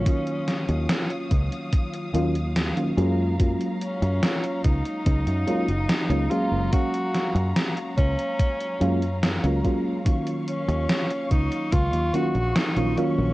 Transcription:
Already playing: string section F#3 F5, tenor saxophone C#4
0.04 fm electric piano D#3 F#3 A#3 C#4 F4, string section D#6, kick, closed hi-hat
0.27 closed hi-hat
0.48 snare, closed hi-hat
0.69 fingered electric bass D#2, closed hi-hat
0.89 snare, closed hi-hat
1.10 closed hi-hat
1.31 fingered electric bass C#2, kick, closed hi-hat
1.52 closed hi-hat
1.73 kick, closed hi-hat
1.93 closed hi-hat
2.13 fingered electric bass D#2, fm electric piano D#3 F#3 A#3 C#4 F4, closed hi-hat
2.35 closed hi-hat
2.56 snare, closed hi-hat
2.76 fm electric piano D#3 F#3 A#3 C#4 F4, closed hi-hat
2.97 fingered electric bass F#2, fm electric piano F#3 G#3 A#3 C#4 F4, string section A#5, closed hi-hat
3.38 fm electric piano F#3 G#3 A#3 C#4 F4, kick, closed hi-hat
3.60 closed hi-hat
3.81 tenor saxophone C#4, closed hi-hat
4.02 fingered electric bass F#2, closed hi-hat
4.23 snare, closed hi-hat
4.44 closed hi-hat
4.64 fingered electric bass C#2, tenor saxophone D#4, kick, closed hi-hat
4.86 closed hi-hat
5.06 fingered electric bass C#2, kick, closed hi-hat
5.27 fingered electric bass F#2, closed hi-hat
5.47 fm electric piano F#3 G#3 A#3 C#4 F4, closed hi-hat
5.68 fingered electric bass F#1, closed hi-hat
5.89 snare, closed hi-hat
6.09 fingered electric bass C#2, fm electric piano F#3 G#3 A#3 C#4 F4, closed hi-hat
6.30 fm electric piano F#3 G#3 A#3 C#4 F4, tenor saxophone F4, closed hi-hat
6.52 fingered electric bass F#1
6.71 fm electric piano F#3 G#3 A#3 C#4 F5, tenor saxophone F#4, kick, closed hi-hat
6.94 closed hi-hat
7.14 snare, closed hi-hat
7.35 fingered electric bass F#2, closed hi-hat
7.56 snare, closed hi-hat
7.77 closed hi-hat
7.97 fingered electric bass C#2, tenor saxophone C#4, kick, closed hi-hat
8.19 closed hi-hat
8.39 kick, closed hi-hat
8.60 closed hi-hat
8.80 fingered electric bass F#2, fm electric piano F#3 G#3 A#3 C#4 F4, closed hi-hat
9.02 closed hi-hat
9.23 snare, closed hi-hat
9.43 fingered electric bass C#2, fm electric piano F#3 G#3 A#3 C#4 F4, closed hi-hat
9.63 fm electric piano F#3 G#3 A#3 C#4 F4, kick, closed hi-hat
10.04 fm electric piano D#3 F#3 A#3 C#4 F4, string section F5 C#6, kick, closed hi-hat
10.27 closed hi-hat
10.47 tenor saxophone C#4, closed hi-hat
10.68 fingered electric bass D#2, closed hi-hat
10.89 snare, closed hi-hat
11.10 closed hi-hat
11.31 fingered electric bass C#2, tenor saxophone D#4, kick, closed hi-hat
11.52 closed hi-hat
11.73 fingered electric bass C#2, tenor saxophone F4, kick, closed hi-hat
11.93 fingered electric bass D#2, closed hi-hat
12.14 fm electric piano D#3 F#3 A#3 C#4 F4, tenor saxophone F#4, closed hi-hat
12.35 fingered electric bass A#1, closed hi-hat
12.56 tenor saxophone D#4, snare, closed hi-hat
12.76 fingered electric bass A#1, fm electric piano D#3 F#3 A#3 C#4 F4, closed hi-hat
12.97 fm electric piano D#3 F#3 A#3 C#4 F4, tenor saxophone C#4, closed hi-hat
13.18 fingered electric bass A#1

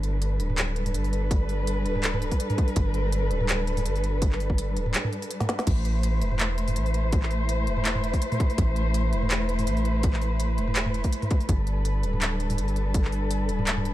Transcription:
Already playing: 808-style bass G1, cello section G3 D4 A4 B4
0.03 closed hi-hat
0.22 closed hi-hat
0.40 808-style bass D1, closed hi-hat
0.50 mid tom
0.58 clap, closed hi-hat
0.76 closed hi-hat
0.86 mid tom, open hi-hat
0.94 808-style bass G1, closed hi-hat
1.04 open hi-hat
1.13 closed hi-hat
1.31 kick, closed hi-hat
1.49 open hi-hat
1.67 closed hi-hat
1.85 808-style bass D1, closed hi-hat
1.95 mid tom
2.04 clap, closed hi-hat
2.14 mid tom
2.22 closed hi-hat
2.32 kick, open hi-hat
2.40 closed hi-hat
2.50 mid tom, open hi-hat
2.58 kick, closed hi-hat
2.68 open hi-hat
2.76 808-style bass G1, kick, closed hi-hat
2.94 closed hi-hat
3.12 closed hi-hat
3.31 808-style bass D1, closed hi-hat
3.41 mid tom
3.49 clap, closed hi-hat
3.67 closed hi-hat
3.77 mid tom, open hi-hat
3.85 808-style bass G1, closed hi-hat
3.96 open hi-hat
4.04 closed hi-hat
4.22 kick, closed hi-hat
4.32 clap
4.40 open hi-hat
4.50 kick
4.58 closed hi-hat
4.76 808-style bass D1, closed hi-hat
4.86 mid tom
4.94 clap, closed hi-hat
5.04 mid tom
5.13 closed hi-hat
5.22 open hi-hat
5.31 closed hi-hat
5.40 snare, mid tom, open hi-hat
5.49 snare, closed hi-hat
5.59 snare, open hi-hat
5.67 808-style bass A1, cello section A3 E4 B4 C5, kick, closed hi-hat, crash
5.85 closed hi-hat
6.03 closed hi-hat
6.21 808-style bass E1, closed hi-hat
6.31 mid tom
6.40 clap, closed hi-hat
6.58 closed hi-hat
6.68 mid tom, open hi-hat
6.76 808-style bass A1, closed hi-hat
6.86 open hi-hat
6.94 closed hi-hat
7.12 kick, closed hi-hat
7.23 clap
7.31 open hi-hat
7.49 closed hi-hat
7.67 808-style bass E1, closed hi-hat
7.77 mid tom
7.85 clap, closed hi-hat
7.95 mid tom
8.04 closed hi-hat
8.14 kick, open hi-hat
8.22 closed hi-hat
8.32 mid tom, open hi-hat
8.40 kick, closed hi-hat
8.50 open hi-hat
8.58 808-style bass A1, kick, closed hi-hat
8.76 closed hi-hat
8.94 closed hi-hat
9.13 808-style bass E1, closed hi-hat
9.22 mid tom
9.31 clap, closed hi-hat
9.49 closed hi-hat
9.59 mid tom, open hi-hat
9.67 808-style bass A1, closed hi-hat
9.77 open hi-hat
9.85 closed hi-hat
10.03 kick, closed hi-hat
10.13 clap
10.21 open hi-hat
10.40 closed hi-hat
10.58 808-style bass E1, closed hi-hat
10.68 mid tom
10.76 clap, closed hi-hat
10.86 mid tom
10.94 closed hi-hat
11.04 kick, open hi-hat
11.12 closed hi-hat
11.22 mid tom, open hi-hat
11.31 kick, closed hi-hat
11.40 open hi-hat
11.49 808-style bass G1, cello section G3 D4 A4, kick, closed hi-hat
11.67 closed hi-hat
11.85 closed hi-hat
12.03 808-style bass D1, closed hi-hat
12.13 mid tom
12.22 clap, closed hi-hat
12.40 closed hi-hat
12.50 mid tom, open hi-hat
12.58 808-style bass G1, closed hi-hat
12.68 open hi-hat
12.76 closed hi-hat
12.94 kick, closed hi-hat
13.04 clap
13.12 open hi-hat
13.31 closed hi-hat
13.49 808-style bass D1, closed hi-hat
13.59 mid tom
13.67 clap, closed hi-hat
13.77 mid tom
13.85 closed hi-hat

